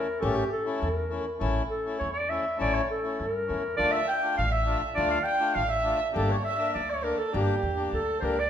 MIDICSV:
0, 0, Header, 1, 5, 480
1, 0, Start_track
1, 0, Tempo, 592300
1, 177, Time_signature, 2, 2, 24, 8
1, 6888, End_track
2, 0, Start_track
2, 0, Title_t, "Violin"
2, 0, Program_c, 0, 40
2, 3079, Note_on_c, 0, 74, 89
2, 3207, Note_on_c, 0, 76, 97
2, 3220, Note_off_c, 0, 74, 0
2, 3316, Note_on_c, 0, 79, 82
2, 3328, Note_off_c, 0, 76, 0
2, 3556, Note_on_c, 0, 77, 79
2, 3569, Note_off_c, 0, 79, 0
2, 3663, Note_on_c, 0, 76, 87
2, 3675, Note_off_c, 0, 77, 0
2, 3905, Note_off_c, 0, 76, 0
2, 4032, Note_on_c, 0, 74, 98
2, 4253, Note_off_c, 0, 74, 0
2, 4280, Note_on_c, 0, 79, 83
2, 4497, Note_off_c, 0, 79, 0
2, 4515, Note_on_c, 0, 77, 74
2, 4622, Note_on_c, 0, 76, 88
2, 4635, Note_off_c, 0, 77, 0
2, 4864, Note_off_c, 0, 76, 0
2, 5000, Note_on_c, 0, 69, 72
2, 5100, Note_on_c, 0, 73, 76
2, 5112, Note_off_c, 0, 69, 0
2, 5222, Note_off_c, 0, 73, 0
2, 5257, Note_on_c, 0, 76, 76
2, 5282, Note_on_c, 0, 74, 65
2, 5295, Note_off_c, 0, 76, 0
2, 5340, Note_on_c, 0, 76, 75
2, 5352, Note_off_c, 0, 74, 0
2, 5465, Note_off_c, 0, 76, 0
2, 5480, Note_on_c, 0, 74, 65
2, 5707, Note_on_c, 0, 70, 76
2, 5719, Note_off_c, 0, 74, 0
2, 5825, Note_off_c, 0, 70, 0
2, 5831, Note_on_c, 0, 69, 69
2, 5946, Note_on_c, 0, 67, 78
2, 5958, Note_off_c, 0, 69, 0
2, 6420, Note_off_c, 0, 67, 0
2, 6424, Note_on_c, 0, 69, 68
2, 6650, Note_on_c, 0, 70, 74
2, 6662, Note_off_c, 0, 69, 0
2, 6753, Note_off_c, 0, 70, 0
2, 6758, Note_on_c, 0, 74, 91
2, 6879, Note_off_c, 0, 74, 0
2, 6888, End_track
3, 0, Start_track
3, 0, Title_t, "Clarinet"
3, 0, Program_c, 1, 71
3, 0, Note_on_c, 1, 70, 85
3, 162, Note_on_c, 1, 69, 87
3, 174, Note_off_c, 1, 70, 0
3, 282, Note_on_c, 1, 67, 76
3, 294, Note_off_c, 1, 69, 0
3, 411, Note_off_c, 1, 67, 0
3, 419, Note_on_c, 1, 69, 86
3, 648, Note_off_c, 1, 69, 0
3, 648, Note_on_c, 1, 69, 68
3, 737, Note_off_c, 1, 69, 0
3, 737, Note_on_c, 1, 70, 68
3, 1137, Note_off_c, 1, 70, 0
3, 1379, Note_on_c, 1, 69, 77
3, 1605, Note_off_c, 1, 69, 0
3, 1612, Note_on_c, 1, 73, 85
3, 1721, Note_off_c, 1, 73, 0
3, 1726, Note_on_c, 1, 74, 86
3, 1857, Note_on_c, 1, 76, 94
3, 1870, Note_off_c, 1, 74, 0
3, 2102, Note_off_c, 1, 76, 0
3, 2115, Note_on_c, 1, 74, 91
3, 2224, Note_on_c, 1, 73, 91
3, 2236, Note_off_c, 1, 74, 0
3, 2345, Note_off_c, 1, 73, 0
3, 2354, Note_on_c, 1, 69, 79
3, 2586, Note_on_c, 1, 70, 85
3, 2598, Note_off_c, 1, 69, 0
3, 3048, Note_off_c, 1, 70, 0
3, 3052, Note_on_c, 1, 74, 106
3, 3171, Note_on_c, 1, 76, 88
3, 3183, Note_off_c, 1, 74, 0
3, 3296, Note_off_c, 1, 76, 0
3, 3301, Note_on_c, 1, 79, 90
3, 3527, Note_off_c, 1, 79, 0
3, 3540, Note_on_c, 1, 77, 80
3, 3649, Note_off_c, 1, 77, 0
3, 3654, Note_on_c, 1, 76, 86
3, 3883, Note_off_c, 1, 76, 0
3, 4009, Note_on_c, 1, 74, 92
3, 4129, Note_off_c, 1, 74, 0
3, 4135, Note_on_c, 1, 77, 84
3, 4242, Note_on_c, 1, 79, 95
3, 4254, Note_off_c, 1, 77, 0
3, 4494, Note_on_c, 1, 77, 79
3, 4506, Note_off_c, 1, 79, 0
3, 4601, Note_off_c, 1, 77, 0
3, 4606, Note_on_c, 1, 76, 79
3, 4838, Note_off_c, 1, 76, 0
3, 4982, Note_on_c, 1, 69, 80
3, 5118, Note_on_c, 1, 73, 72
3, 5130, Note_off_c, 1, 69, 0
3, 5215, Note_off_c, 1, 73, 0
3, 5220, Note_on_c, 1, 76, 78
3, 5445, Note_off_c, 1, 76, 0
3, 5461, Note_on_c, 1, 74, 76
3, 5591, Note_on_c, 1, 73, 86
3, 5603, Note_off_c, 1, 74, 0
3, 5700, Note_on_c, 1, 70, 79
3, 5713, Note_off_c, 1, 73, 0
3, 5816, Note_on_c, 1, 69, 85
3, 5828, Note_off_c, 1, 70, 0
3, 5939, Note_off_c, 1, 69, 0
3, 5946, Note_on_c, 1, 67, 76
3, 6390, Note_off_c, 1, 67, 0
3, 6433, Note_on_c, 1, 69, 85
3, 6622, Note_off_c, 1, 69, 0
3, 6645, Note_on_c, 1, 72, 61
3, 6682, Note_on_c, 1, 70, 93
3, 6695, Note_off_c, 1, 72, 0
3, 6803, Note_on_c, 1, 74, 93
3, 6815, Note_off_c, 1, 70, 0
3, 6888, Note_off_c, 1, 74, 0
3, 6888, End_track
4, 0, Start_track
4, 0, Title_t, "Accordion"
4, 0, Program_c, 2, 21
4, 170, Note_on_c, 2, 57, 76
4, 172, Note_on_c, 2, 61, 78
4, 176, Note_on_c, 2, 67, 96
4, 355, Note_off_c, 2, 57, 0
4, 356, Note_off_c, 2, 61, 0
4, 358, Note_off_c, 2, 67, 0
4, 532, Note_on_c, 2, 57, 52
4, 534, Note_on_c, 2, 61, 54
4, 534, Note_on_c, 2, 64, 72
4, 717, Note_off_c, 2, 57, 0
4, 718, Note_off_c, 2, 61, 0
4, 718, Note_off_c, 2, 64, 0
4, 887, Note_on_c, 2, 57, 68
4, 894, Note_on_c, 2, 61, 56
4, 897, Note_on_c, 2, 64, 69
4, 1015, Note_off_c, 2, 57, 0
4, 1018, Note_off_c, 2, 61, 0
4, 1019, Note_off_c, 2, 64, 0
4, 1125, Note_on_c, 2, 57, 71
4, 1132, Note_on_c, 2, 61, 78
4, 1135, Note_on_c, 2, 64, 90
4, 1314, Note_off_c, 2, 57, 0
4, 1318, Note_off_c, 2, 61, 0
4, 1319, Note_off_c, 2, 64, 0
4, 1500, Note_on_c, 2, 57, 59
4, 1507, Note_on_c, 2, 61, 50
4, 1509, Note_on_c, 2, 64, 62
4, 1682, Note_off_c, 2, 57, 0
4, 1686, Note_off_c, 2, 61, 0
4, 1687, Note_off_c, 2, 64, 0
4, 1856, Note_on_c, 2, 57, 55
4, 1862, Note_on_c, 2, 61, 57
4, 1867, Note_on_c, 2, 64, 68
4, 1981, Note_off_c, 2, 57, 0
4, 1984, Note_off_c, 2, 61, 0
4, 1986, Note_off_c, 2, 64, 0
4, 2083, Note_on_c, 2, 57, 74
4, 2091, Note_on_c, 2, 61, 67
4, 2097, Note_on_c, 2, 64, 100
4, 2275, Note_off_c, 2, 57, 0
4, 2279, Note_off_c, 2, 61, 0
4, 2282, Note_off_c, 2, 64, 0
4, 2457, Note_on_c, 2, 57, 59
4, 2458, Note_on_c, 2, 61, 54
4, 2463, Note_on_c, 2, 64, 57
4, 2642, Note_off_c, 2, 57, 0
4, 2642, Note_off_c, 2, 61, 0
4, 2645, Note_off_c, 2, 64, 0
4, 2816, Note_on_c, 2, 61, 51
4, 2818, Note_on_c, 2, 57, 64
4, 2822, Note_on_c, 2, 64, 60
4, 2942, Note_off_c, 2, 57, 0
4, 2942, Note_off_c, 2, 61, 0
4, 2945, Note_off_c, 2, 64, 0
4, 3054, Note_on_c, 2, 62, 67
4, 3057, Note_on_c, 2, 57, 81
4, 3061, Note_on_c, 2, 65, 87
4, 3241, Note_off_c, 2, 62, 0
4, 3242, Note_off_c, 2, 57, 0
4, 3244, Note_off_c, 2, 65, 0
4, 3420, Note_on_c, 2, 57, 61
4, 3424, Note_on_c, 2, 62, 50
4, 3429, Note_on_c, 2, 65, 59
4, 3604, Note_off_c, 2, 57, 0
4, 3606, Note_off_c, 2, 62, 0
4, 3608, Note_off_c, 2, 65, 0
4, 3775, Note_on_c, 2, 62, 58
4, 3776, Note_on_c, 2, 57, 60
4, 3781, Note_on_c, 2, 65, 76
4, 3901, Note_off_c, 2, 62, 0
4, 3902, Note_off_c, 2, 57, 0
4, 3904, Note_off_c, 2, 65, 0
4, 4013, Note_on_c, 2, 57, 87
4, 4015, Note_on_c, 2, 62, 72
4, 4024, Note_on_c, 2, 65, 93
4, 4200, Note_off_c, 2, 57, 0
4, 4201, Note_off_c, 2, 62, 0
4, 4205, Note_off_c, 2, 65, 0
4, 4371, Note_on_c, 2, 57, 55
4, 4374, Note_on_c, 2, 62, 46
4, 4380, Note_on_c, 2, 65, 73
4, 4559, Note_off_c, 2, 57, 0
4, 4560, Note_off_c, 2, 62, 0
4, 4563, Note_off_c, 2, 65, 0
4, 4732, Note_on_c, 2, 57, 61
4, 4734, Note_on_c, 2, 62, 60
4, 4741, Note_on_c, 2, 65, 70
4, 4859, Note_off_c, 2, 57, 0
4, 4860, Note_off_c, 2, 62, 0
4, 4863, Note_off_c, 2, 65, 0
4, 4962, Note_on_c, 2, 58, 82
4, 4967, Note_on_c, 2, 62, 72
4, 4973, Note_on_c, 2, 67, 78
4, 5153, Note_off_c, 2, 58, 0
4, 5156, Note_off_c, 2, 62, 0
4, 5159, Note_off_c, 2, 67, 0
4, 5331, Note_on_c, 2, 58, 57
4, 5338, Note_on_c, 2, 62, 51
4, 5339, Note_on_c, 2, 70, 59
4, 5517, Note_off_c, 2, 58, 0
4, 5521, Note_off_c, 2, 62, 0
4, 5521, Note_off_c, 2, 70, 0
4, 5694, Note_on_c, 2, 58, 70
4, 5695, Note_on_c, 2, 62, 62
4, 5697, Note_on_c, 2, 69, 66
4, 5818, Note_off_c, 2, 58, 0
4, 5819, Note_off_c, 2, 62, 0
4, 5820, Note_off_c, 2, 69, 0
4, 5932, Note_on_c, 2, 58, 78
4, 5935, Note_on_c, 2, 62, 66
4, 5942, Note_on_c, 2, 67, 89
4, 6117, Note_off_c, 2, 58, 0
4, 6118, Note_off_c, 2, 62, 0
4, 6122, Note_off_c, 2, 67, 0
4, 6291, Note_on_c, 2, 62, 52
4, 6292, Note_on_c, 2, 58, 57
4, 6297, Note_on_c, 2, 67, 62
4, 6476, Note_off_c, 2, 58, 0
4, 6476, Note_off_c, 2, 62, 0
4, 6479, Note_off_c, 2, 67, 0
4, 6657, Note_on_c, 2, 58, 69
4, 6662, Note_on_c, 2, 62, 68
4, 6671, Note_on_c, 2, 67, 87
4, 6778, Note_off_c, 2, 58, 0
4, 6781, Note_off_c, 2, 62, 0
4, 6785, Note_off_c, 2, 67, 0
4, 6888, End_track
5, 0, Start_track
5, 0, Title_t, "Upright bass"
5, 0, Program_c, 3, 32
5, 183, Note_on_c, 3, 33, 106
5, 326, Note_off_c, 3, 33, 0
5, 666, Note_on_c, 3, 40, 90
5, 954, Note_off_c, 3, 40, 0
5, 1144, Note_on_c, 3, 33, 95
5, 1288, Note_off_c, 3, 33, 0
5, 1628, Note_on_c, 3, 40, 82
5, 1916, Note_off_c, 3, 40, 0
5, 2114, Note_on_c, 3, 33, 97
5, 2256, Note_off_c, 3, 33, 0
5, 2595, Note_on_c, 3, 43, 67
5, 2807, Note_off_c, 3, 43, 0
5, 2834, Note_on_c, 3, 40, 78
5, 3047, Note_off_c, 3, 40, 0
5, 3075, Note_on_c, 3, 38, 94
5, 3217, Note_off_c, 3, 38, 0
5, 3554, Note_on_c, 3, 33, 96
5, 3840, Note_off_c, 3, 33, 0
5, 4033, Note_on_c, 3, 38, 99
5, 4175, Note_off_c, 3, 38, 0
5, 4504, Note_on_c, 3, 33, 85
5, 4792, Note_off_c, 3, 33, 0
5, 4991, Note_on_c, 3, 31, 100
5, 5133, Note_off_c, 3, 31, 0
5, 5476, Note_on_c, 3, 38, 84
5, 5759, Note_off_c, 3, 38, 0
5, 5951, Note_on_c, 3, 31, 109
5, 6092, Note_off_c, 3, 31, 0
5, 6182, Note_on_c, 3, 40, 78
5, 6397, Note_off_c, 3, 40, 0
5, 6425, Note_on_c, 3, 38, 77
5, 6639, Note_off_c, 3, 38, 0
5, 6664, Note_on_c, 3, 37, 78
5, 6878, Note_off_c, 3, 37, 0
5, 6888, End_track
0, 0, End_of_file